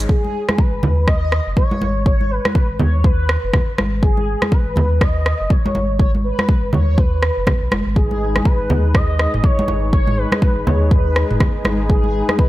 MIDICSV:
0, 0, Header, 1, 5, 480
1, 0, Start_track
1, 0, Key_signature, 5, "minor"
1, 0, Tempo, 491803
1, 91, Time_signature, 4, 2, 24, 8
1, 12188, End_track
2, 0, Start_track
2, 0, Title_t, "Analog synth lead"
2, 0, Program_c, 0, 81
2, 93, Note_on_c, 0, 68, 102
2, 571, Note_on_c, 0, 71, 104
2, 586, Note_off_c, 0, 68, 0
2, 1044, Note_off_c, 0, 71, 0
2, 1050, Note_on_c, 0, 75, 117
2, 1497, Note_off_c, 0, 75, 0
2, 1530, Note_on_c, 0, 73, 113
2, 1977, Note_off_c, 0, 73, 0
2, 2008, Note_on_c, 0, 73, 109
2, 2249, Note_on_c, 0, 71, 99
2, 2264, Note_off_c, 0, 73, 0
2, 2725, Note_off_c, 0, 71, 0
2, 2731, Note_on_c, 0, 73, 99
2, 2903, Note_off_c, 0, 73, 0
2, 2913, Note_on_c, 0, 73, 65
2, 2970, Note_on_c, 0, 71, 92
2, 2984, Note_off_c, 0, 73, 0
2, 3690, Note_off_c, 0, 71, 0
2, 3930, Note_on_c, 0, 68, 103
2, 4411, Note_on_c, 0, 71, 104
2, 4425, Note_off_c, 0, 68, 0
2, 4892, Note_on_c, 0, 75, 120
2, 4907, Note_off_c, 0, 71, 0
2, 5372, Note_on_c, 0, 73, 110
2, 5387, Note_off_c, 0, 75, 0
2, 5847, Note_off_c, 0, 73, 0
2, 5853, Note_on_c, 0, 73, 107
2, 5960, Note_off_c, 0, 73, 0
2, 6092, Note_on_c, 0, 71, 104
2, 6538, Note_off_c, 0, 71, 0
2, 6573, Note_on_c, 0, 73, 100
2, 6812, Note_on_c, 0, 71, 94
2, 6826, Note_off_c, 0, 73, 0
2, 7531, Note_off_c, 0, 71, 0
2, 7772, Note_on_c, 0, 68, 102
2, 8248, Note_on_c, 0, 71, 103
2, 8263, Note_off_c, 0, 68, 0
2, 8728, Note_on_c, 0, 75, 114
2, 8743, Note_off_c, 0, 71, 0
2, 9207, Note_on_c, 0, 73, 110
2, 9222, Note_off_c, 0, 75, 0
2, 9680, Note_off_c, 0, 73, 0
2, 9686, Note_on_c, 0, 73, 110
2, 9927, Note_on_c, 0, 71, 100
2, 9941, Note_off_c, 0, 73, 0
2, 10409, Note_on_c, 0, 73, 98
2, 10424, Note_off_c, 0, 71, 0
2, 10643, Note_off_c, 0, 73, 0
2, 10649, Note_on_c, 0, 71, 94
2, 11331, Note_off_c, 0, 71, 0
2, 11610, Note_on_c, 0, 68, 103
2, 12057, Note_off_c, 0, 68, 0
2, 12091, Note_on_c, 0, 71, 109
2, 12188, Note_off_c, 0, 71, 0
2, 12188, End_track
3, 0, Start_track
3, 0, Title_t, "Analog synth pad"
3, 0, Program_c, 1, 89
3, 7769, Note_on_c, 1, 56, 79
3, 7770, Note_on_c, 1, 63, 73
3, 7770, Note_on_c, 1, 68, 70
3, 7770, Note_on_c, 1, 71, 88
3, 12188, Note_off_c, 1, 56, 0
3, 12188, Note_off_c, 1, 63, 0
3, 12188, Note_off_c, 1, 68, 0
3, 12188, Note_off_c, 1, 71, 0
3, 12188, End_track
4, 0, Start_track
4, 0, Title_t, "Sub bass"
4, 0, Program_c, 2, 38
4, 714, Note_on_c, 2, 32, 92
4, 783, Note_off_c, 2, 32, 0
4, 812, Note_on_c, 2, 39, 103
4, 1368, Note_off_c, 2, 39, 0
4, 1434, Note_on_c, 2, 30, 94
4, 1503, Note_off_c, 2, 30, 0
4, 1771, Note_on_c, 2, 32, 97
4, 2327, Note_off_c, 2, 32, 0
4, 2636, Note_on_c, 2, 32, 91
4, 2704, Note_off_c, 2, 32, 0
4, 2733, Note_on_c, 2, 39, 100
4, 3288, Note_off_c, 2, 39, 0
4, 3355, Note_on_c, 2, 30, 94
4, 3423, Note_off_c, 2, 30, 0
4, 3693, Note_on_c, 2, 32, 93
4, 4248, Note_off_c, 2, 32, 0
4, 4556, Note_on_c, 2, 32, 95
4, 4624, Note_off_c, 2, 32, 0
4, 4652, Note_on_c, 2, 39, 103
4, 5208, Note_off_c, 2, 39, 0
4, 5274, Note_on_c, 2, 30, 92
4, 5343, Note_off_c, 2, 30, 0
4, 5611, Note_on_c, 2, 32, 94
4, 6167, Note_off_c, 2, 32, 0
4, 6474, Note_on_c, 2, 32, 95
4, 6543, Note_off_c, 2, 32, 0
4, 6571, Note_on_c, 2, 39, 100
4, 7127, Note_off_c, 2, 39, 0
4, 7195, Note_on_c, 2, 30, 92
4, 7263, Note_off_c, 2, 30, 0
4, 7435, Note_on_c, 2, 35, 89
4, 7503, Note_off_c, 2, 35, 0
4, 7531, Note_on_c, 2, 30, 96
4, 7632, Note_off_c, 2, 30, 0
4, 7675, Note_on_c, 2, 32, 104
4, 8207, Note_off_c, 2, 32, 0
4, 8395, Note_on_c, 2, 32, 95
4, 8463, Note_off_c, 2, 32, 0
4, 8492, Note_on_c, 2, 39, 99
4, 9048, Note_off_c, 2, 39, 0
4, 9115, Note_on_c, 2, 30, 92
4, 9183, Note_off_c, 2, 30, 0
4, 9451, Note_on_c, 2, 32, 100
4, 10007, Note_off_c, 2, 32, 0
4, 10315, Note_on_c, 2, 32, 94
4, 10383, Note_off_c, 2, 32, 0
4, 10414, Note_on_c, 2, 39, 101
4, 10969, Note_off_c, 2, 39, 0
4, 11035, Note_on_c, 2, 30, 93
4, 11103, Note_off_c, 2, 30, 0
4, 11372, Note_on_c, 2, 32, 99
4, 11928, Note_off_c, 2, 32, 0
4, 12188, End_track
5, 0, Start_track
5, 0, Title_t, "Drums"
5, 90, Note_on_c, 9, 36, 115
5, 187, Note_off_c, 9, 36, 0
5, 239, Note_on_c, 9, 63, 57
5, 336, Note_off_c, 9, 63, 0
5, 474, Note_on_c, 9, 37, 89
5, 478, Note_on_c, 9, 63, 93
5, 570, Note_on_c, 9, 36, 117
5, 572, Note_off_c, 9, 37, 0
5, 576, Note_off_c, 9, 63, 0
5, 668, Note_off_c, 9, 36, 0
5, 810, Note_on_c, 9, 64, 106
5, 812, Note_on_c, 9, 63, 66
5, 907, Note_off_c, 9, 64, 0
5, 909, Note_off_c, 9, 63, 0
5, 1050, Note_on_c, 9, 36, 116
5, 1050, Note_on_c, 9, 37, 94
5, 1147, Note_off_c, 9, 36, 0
5, 1148, Note_off_c, 9, 37, 0
5, 1290, Note_on_c, 9, 37, 78
5, 1388, Note_off_c, 9, 37, 0
5, 1529, Note_on_c, 9, 36, 115
5, 1627, Note_off_c, 9, 36, 0
5, 1672, Note_on_c, 9, 63, 97
5, 1770, Note_off_c, 9, 63, 0
5, 1772, Note_on_c, 9, 63, 102
5, 1870, Note_off_c, 9, 63, 0
5, 2010, Note_on_c, 9, 36, 118
5, 2107, Note_off_c, 9, 36, 0
5, 2154, Note_on_c, 9, 63, 60
5, 2252, Note_off_c, 9, 63, 0
5, 2393, Note_on_c, 9, 37, 91
5, 2395, Note_on_c, 9, 63, 83
5, 2490, Note_off_c, 9, 37, 0
5, 2490, Note_on_c, 9, 36, 120
5, 2493, Note_off_c, 9, 63, 0
5, 2587, Note_off_c, 9, 36, 0
5, 2728, Note_on_c, 9, 64, 103
5, 2737, Note_on_c, 9, 63, 63
5, 2826, Note_off_c, 9, 64, 0
5, 2834, Note_off_c, 9, 63, 0
5, 2970, Note_on_c, 9, 36, 123
5, 3067, Note_off_c, 9, 36, 0
5, 3212, Note_on_c, 9, 37, 87
5, 3309, Note_off_c, 9, 37, 0
5, 3450, Note_on_c, 9, 36, 119
5, 3450, Note_on_c, 9, 37, 81
5, 3454, Note_on_c, 9, 64, 84
5, 3547, Note_off_c, 9, 36, 0
5, 3548, Note_off_c, 9, 37, 0
5, 3551, Note_off_c, 9, 64, 0
5, 3692, Note_on_c, 9, 63, 108
5, 3693, Note_on_c, 9, 37, 85
5, 3790, Note_off_c, 9, 37, 0
5, 3790, Note_off_c, 9, 63, 0
5, 3930, Note_on_c, 9, 36, 121
5, 4028, Note_off_c, 9, 36, 0
5, 4073, Note_on_c, 9, 63, 61
5, 4170, Note_off_c, 9, 63, 0
5, 4313, Note_on_c, 9, 37, 91
5, 4316, Note_on_c, 9, 63, 92
5, 4410, Note_on_c, 9, 36, 120
5, 4411, Note_off_c, 9, 37, 0
5, 4414, Note_off_c, 9, 63, 0
5, 4508, Note_off_c, 9, 36, 0
5, 4644, Note_on_c, 9, 63, 63
5, 4655, Note_on_c, 9, 64, 110
5, 4742, Note_off_c, 9, 63, 0
5, 4752, Note_off_c, 9, 64, 0
5, 4890, Note_on_c, 9, 36, 126
5, 4892, Note_on_c, 9, 37, 98
5, 4988, Note_off_c, 9, 36, 0
5, 4990, Note_off_c, 9, 37, 0
5, 5133, Note_on_c, 9, 37, 88
5, 5231, Note_off_c, 9, 37, 0
5, 5371, Note_on_c, 9, 36, 123
5, 5468, Note_off_c, 9, 36, 0
5, 5520, Note_on_c, 9, 63, 114
5, 5611, Note_off_c, 9, 63, 0
5, 5611, Note_on_c, 9, 63, 115
5, 5709, Note_off_c, 9, 63, 0
5, 5851, Note_on_c, 9, 36, 122
5, 5948, Note_off_c, 9, 36, 0
5, 6000, Note_on_c, 9, 63, 64
5, 6097, Note_off_c, 9, 63, 0
5, 6234, Note_on_c, 9, 63, 91
5, 6236, Note_on_c, 9, 37, 91
5, 6331, Note_off_c, 9, 63, 0
5, 6331, Note_on_c, 9, 36, 119
5, 6334, Note_off_c, 9, 37, 0
5, 6428, Note_off_c, 9, 36, 0
5, 6566, Note_on_c, 9, 64, 108
5, 6581, Note_on_c, 9, 63, 70
5, 6664, Note_off_c, 9, 64, 0
5, 6679, Note_off_c, 9, 63, 0
5, 6811, Note_on_c, 9, 36, 119
5, 6908, Note_off_c, 9, 36, 0
5, 7052, Note_on_c, 9, 37, 87
5, 7149, Note_off_c, 9, 37, 0
5, 7288, Note_on_c, 9, 64, 94
5, 7291, Note_on_c, 9, 36, 117
5, 7293, Note_on_c, 9, 37, 86
5, 7386, Note_off_c, 9, 64, 0
5, 7388, Note_off_c, 9, 36, 0
5, 7390, Note_off_c, 9, 37, 0
5, 7531, Note_on_c, 9, 63, 110
5, 7533, Note_on_c, 9, 37, 86
5, 7629, Note_off_c, 9, 63, 0
5, 7631, Note_off_c, 9, 37, 0
5, 7771, Note_on_c, 9, 36, 115
5, 7868, Note_off_c, 9, 36, 0
5, 7916, Note_on_c, 9, 63, 63
5, 8013, Note_off_c, 9, 63, 0
5, 8156, Note_on_c, 9, 37, 90
5, 8159, Note_on_c, 9, 63, 82
5, 8251, Note_on_c, 9, 36, 119
5, 8253, Note_off_c, 9, 37, 0
5, 8257, Note_off_c, 9, 63, 0
5, 8348, Note_off_c, 9, 36, 0
5, 8488, Note_on_c, 9, 63, 63
5, 8491, Note_on_c, 9, 64, 101
5, 8586, Note_off_c, 9, 63, 0
5, 8589, Note_off_c, 9, 64, 0
5, 8731, Note_on_c, 9, 36, 118
5, 8732, Note_on_c, 9, 37, 95
5, 8732, Note_on_c, 9, 45, 81
5, 8828, Note_off_c, 9, 36, 0
5, 8830, Note_off_c, 9, 37, 0
5, 8830, Note_off_c, 9, 45, 0
5, 8973, Note_on_c, 9, 37, 82
5, 9071, Note_off_c, 9, 37, 0
5, 9115, Note_on_c, 9, 45, 94
5, 9211, Note_on_c, 9, 36, 120
5, 9213, Note_off_c, 9, 45, 0
5, 9308, Note_off_c, 9, 36, 0
5, 9359, Note_on_c, 9, 63, 108
5, 9448, Note_off_c, 9, 63, 0
5, 9448, Note_on_c, 9, 63, 106
5, 9546, Note_off_c, 9, 63, 0
5, 9691, Note_on_c, 9, 36, 110
5, 9788, Note_off_c, 9, 36, 0
5, 9829, Note_on_c, 9, 63, 57
5, 9834, Note_on_c, 9, 45, 96
5, 9927, Note_off_c, 9, 63, 0
5, 9932, Note_off_c, 9, 45, 0
5, 10071, Note_on_c, 9, 63, 82
5, 10075, Note_on_c, 9, 37, 88
5, 10169, Note_off_c, 9, 63, 0
5, 10170, Note_on_c, 9, 36, 114
5, 10173, Note_off_c, 9, 37, 0
5, 10268, Note_off_c, 9, 36, 0
5, 10413, Note_on_c, 9, 63, 62
5, 10414, Note_on_c, 9, 64, 98
5, 10510, Note_off_c, 9, 63, 0
5, 10512, Note_off_c, 9, 64, 0
5, 10650, Note_on_c, 9, 36, 114
5, 10652, Note_on_c, 9, 45, 83
5, 10747, Note_off_c, 9, 36, 0
5, 10750, Note_off_c, 9, 45, 0
5, 10892, Note_on_c, 9, 37, 80
5, 10990, Note_off_c, 9, 37, 0
5, 11034, Note_on_c, 9, 45, 96
5, 11130, Note_on_c, 9, 36, 111
5, 11131, Note_on_c, 9, 37, 79
5, 11132, Note_off_c, 9, 45, 0
5, 11132, Note_on_c, 9, 64, 92
5, 11228, Note_off_c, 9, 36, 0
5, 11229, Note_off_c, 9, 37, 0
5, 11230, Note_off_c, 9, 64, 0
5, 11367, Note_on_c, 9, 63, 92
5, 11372, Note_on_c, 9, 37, 78
5, 11465, Note_off_c, 9, 63, 0
5, 11469, Note_off_c, 9, 37, 0
5, 11610, Note_on_c, 9, 36, 114
5, 11708, Note_off_c, 9, 36, 0
5, 11748, Note_on_c, 9, 63, 56
5, 11845, Note_off_c, 9, 63, 0
5, 11994, Note_on_c, 9, 37, 85
5, 11994, Note_on_c, 9, 63, 86
5, 12090, Note_on_c, 9, 36, 114
5, 12091, Note_off_c, 9, 63, 0
5, 12092, Note_off_c, 9, 37, 0
5, 12188, Note_off_c, 9, 36, 0
5, 12188, End_track
0, 0, End_of_file